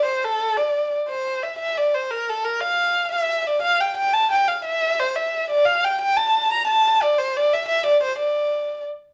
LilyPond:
\new Staff \with { instrumentName = "Erhu" } { \time 6/8 \key d \minor \tempo 4. = 118 c''8 a'4 d''4~ d''32 r16. | c''4 e''8 e''8 d''8 c''8 | bes'8 a'8 bes'8 f''4. | e''8.~ e''32 e''32 d''8 f''8 g''8 g''8 |
a''8 g''8 f''8 e''4 c''8 | e''4 d''8 f''8 g''8 g''8 | a''4 bes''8 a''4 d''8 | c''8 d''8 e''8 e''8 d''8 c''8 |
d''2 r4 | }